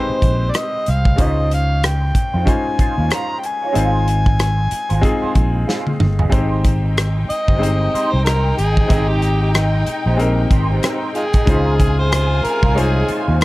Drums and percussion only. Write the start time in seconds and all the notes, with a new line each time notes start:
0.22 kick, closed hi-hat
0.54 cross-stick, closed hi-hat
0.86 closed hi-hat
1.05 kick
1.18 kick, closed hi-hat
1.51 closed hi-hat
1.84 cross-stick, closed hi-hat
2.15 kick, closed hi-hat
2.47 kick, closed hi-hat
2.79 kick, closed hi-hat
3.11 cross-stick, closed hi-hat
3.44 closed hi-hat
3.75 closed hi-hat
4.08 closed hi-hat
4.26 kick
4.39 cross-stick, closed hi-hat
4.71 closed hi-hat
4.90 closed hi-hat
5.03 kick, closed hi-hat
5.35 kick, closed hi-hat
5.69 snare
5.87 high tom
6.00 mid tom
6.19 floor tom
6.32 kick, closed hi-hat
6.64 kick, closed hi-hat
6.97 cross-stick, closed hi-hat
7.30 closed hi-hat
7.48 kick
7.63 closed hi-hat
7.95 closed hi-hat
8.26 cross-stick, closed hi-hat
8.58 closed hi-hat
8.77 kick
8.90 kick, closed hi-hat
9.22 closed hi-hat
9.55 cross-stick, closed hi-hat
9.87 closed hi-hat
10.20 closed hi-hat
10.51 kick, closed hi-hat
10.83 cross-stick, closed hi-hat
11.15 closed hi-hat
11.33 kick, closed hi-hat
11.47 kick, closed hi-hat
11.80 kick, closed hi-hat
12.12 cross-stick, closed hi-hat
12.45 closed hi-hat
12.63 kick
12.78 closed hi-hat
13.08 closed hi-hat
13.41 closed hi-hat